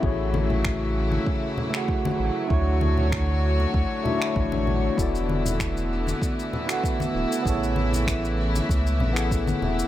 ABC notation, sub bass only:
X:1
M:4/4
L:1/16
Q:1/4=97
K:A
V:1 name="Sub bass" clef=bass
A,,,6- A,,, z6 z A,,, z | D,,6- D,, z D,, z3 A,,, A,,,2 z | E,,,6- E,,, z6 z D,,, z | A,,,6- A,,, z C,,2 A,,,3 z E,,, z |]